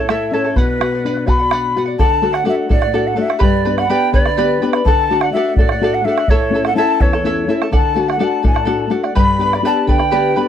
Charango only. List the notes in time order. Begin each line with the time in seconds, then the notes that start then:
0.10 E4 A4 C#5 E5 A5
0.33 E4 A4 E5 A5
0.44 E4 A4 A5
0.56 B4 D5 F#5
0.80 B4 D5 F#5
0.94 D5 F#5
1.06 B4 D5 F#5
1.27 B4 D5 F#5
1.39 D5 F#5
1.52 B4 D5 F#5
1.77 B4 D5 F#5
1.86 D5 F#5
1.99 A4 D5 F#5
2.22 A4 D5 F#5
2.33 D5 F#5
2.45 A4 D5 F#5
2.69 A4 D5 F#5
2.81 D5 F#5
2.94 A4 D5 F#5
3.16 A4 D5 F#5
3.28 D5 F#5
3.39 G4 B4 D5 G5 B5
3.65 B4 D5 G5 B5
3.78 B4 D5 B5
3.89 G4 B4 D5 G5 B5
4.14 B4 D5 G5 B5
4.26 B4 D5 B5
4.37 G4 B4 D5 G5 B5
4.62 B4 D5 G5 B5
4.74 B4 D5 B5
4.87 A4 D5 F#5
5.11 A4 D5 F#5
5.23 D5 F#5
5.35 A4 D5 F#5
5.59 A4 D5 F#5
5.72 D5 F#5
5.83 A4 D5 F#5
6.07 A4 D5 F#5
6.18 D5 F#5
6.30 E4 A4 C#5 E5 A5
6.54 E4 A4 E5 A5
6.66 E4 A4 A5
6.78 E4 A4 C#5 E5 A5
7.01 E4 A4 E5 A5
7.13 E4 A4 A5
7.25 E4 A4 C#5 E5 A5
7.49 E4 A4 E5 A5
7.62 E4 A4 A5
7.72 A4 D5 F#5
7.95 A4 D5 F#5
8.08 D5 F#5
8.19 A4 D5 F#5
8.43 A4 D5 F#5
8.54 D5 F#5
8.65 A4 D5 F#5
8.90 A4 D5 F#5
9.03 D5 F#5
9.15 G4 B4 D5 G5 B5
9.40 B4 D5 G5 B5
9.54 B4 D5 B5
9.65 G4 B4 D5 G5 B5
9.87 B4 D5 G5 B5
9.98 B4 D5 B5
10.11 G4 B4 D5 G5 B5
10.36 B4 D5 G5 B5